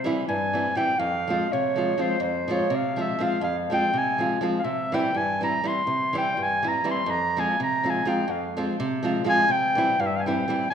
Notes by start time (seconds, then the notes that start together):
Already playing: C3 C5
0.04 E3 G3 C4 E4
0.28 G2 G#5
0.53 E3 G3 C4 E4
0.75 E3 G3 C4 E4 G5
0.99 F2 F5
1.28 F3 G#3 C4 F4
1.52 C3 C#5
1.76 F3 G#3 C4 F4
1.98 F3 G#3 C4 F4 C5
2.20 F2 C5
2.48 F3 G#3 C4 F4
2.52 C#5
2.70 C3
2.76 F5
2.96 F3 G#3 C4 F4
3.02 E5
3.19 F3 G#3 C4 F4
3.23 F5
3.41 F2 F5
3.70 F3 G#3 C4 F4 G5
3.94 C3
3.98 G#5
4.18 F3 G#3 C4 F4
4.41 F3 G#3 C4 F4
4.59 F5
4.64 C3 E5
4.92 E3 G3 C4 E4 G5
5.15 G2 G#5
5.41 E3 G3 C4 E4 A#5
5.63 E3 G3 C4 E4
5.68 C6
5.87 C3
6.13 E3 G3 C4 E4
6.18 G5
6.37 G2
6.42 G#5
6.63 E3 G3 C4 E4
6.68 A#5
6.84 E3 G3 C4 E4
6.91 C6
7.06 F2
7.11 A#5
7.37 F3 G#3 C4 F4 G#5
7.60 C3 A#5
7.83 F3 G#3 C4 F4
7.90 G#5
8.05 F3 G#3 C4 F4 G5
8.28 F2 F5
8.57 F3 G#3 C4 F4
8.80 C3
9.03 F3 G#3 C4 F4
9.24 F3 G#3 C4 F4
9.29 G#5
9.49 C3 G5
9.75 E3 G3 C4 E4
10.00 G2 F5
10.07 E5
10.16 F5 G#5
10.26 E3 G3 C4 E4 G5
10.48 E3 G3 C4 E4
10.71 G#5